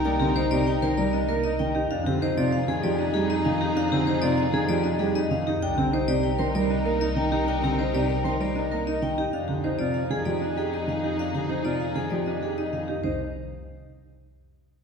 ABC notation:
X:1
M:6/4
L:1/8
Q:1/4=194
K:Cm
V:1 name="Vibraphone"
g G c d g B d e B e g G | f G c d f A d e A e f G | f G c d f A d e A e f G | g G c d g B d e B e g G |
g G c d g B d e B e g G | f G c d f A d e A e f G | f G c d f A d e A e f G | c z8 z3 |]
V:2 name="Violin section"
[EB]8- [EB]3 z | [EA]12- | [EA]8- [EA]3 z | [EB]12- |
[EB]8- [EB]3 z | [EA]12- | [EA]8- [EA]3 z | z12 |]
V:3 name="Clarinet"
E8- E3 z | E12- | E8- E3 z | E12- |
E8- E3 z | E12- | E8- E3 z | z12 |]
V:4 name="Clean electric guitar"
D C E G E c B D B E z E | D C E F z A G D G E z E | D C E F z A G D G E z E | D C E G z c B D B E z E |
D C E G z c B D B E z E | D z E F z A G D G E z E | D z E F z A G D G E z E | E z8 z3 |]
V:5 name="Grand piano" clef=bass
B, D, z C, z E, G, z B, z E, z | z D, z C, z E, F, z G, z E, z | z D, z C, z E, F, z G, z E, z | z D, z C, z E, G, z B, z E, z |
z D, z C, z E, G, z B, z E, z | z D, z C, z E, F, z3 E, z | z D, z C, z E, F, z3 E, z | E, z8 z3 |]
V:6 name="Double bass" clef=bass
C,,12 | F,,12- | F,,12 | C,,12- |
C,,12 | F,,12- | F,,12 | C,, z8 z3 |]